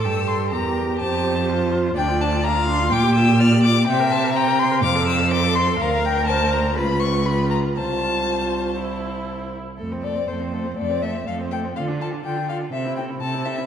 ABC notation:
X:1
M:4/4
L:1/16
Q:1/4=124
K:F
V:1 name="Violin"
e'2 c'2 b4 a6 z2 | g2 a2 b2 c'2 d'2 e'2 f'2 d'2 | g2 a2 b2 c'2 d'2 e'2 d'2 c'2 | f2 g2 a2 b2 _c'2 _d'2 c'2 b2 |
a12 z4 | z2 d2 c4 d2 e2 f2 g2 | f2 a2 g2 f2 e2 g2 a2 e2 |]
V:2 name="Violin"
G4 B4 c8 | d4 f4 g4 d4 | e4 g4 f4 A4 | B4 c4 _c8 |
c12- c2 z2 | A c A c A c A c A c A c A c A c | A F A F A F A F A c A c A c A c |]
V:3 name="Viola"
A4 G8 F4 | D F D F D F D F F G F G F G F G | c B c B c B c B c A c A c A c A | B8 F4 F4 |
F8 E6 z2 | A, C A, C A, C A, C A, C A, C A, C A, C | F D F D F D F D C E C E C E C E |]
V:4 name="Cello" clef=bass
G,,4 E,,4 F,,8 | D,,8 B,,8 | C,8 F,,8 | D,,8 _D,,8 |
C,,12- C,,2 z2 | F,,4 F,,4 F,,4 F,,4 | D,4 D,4 C,4 C,4 |]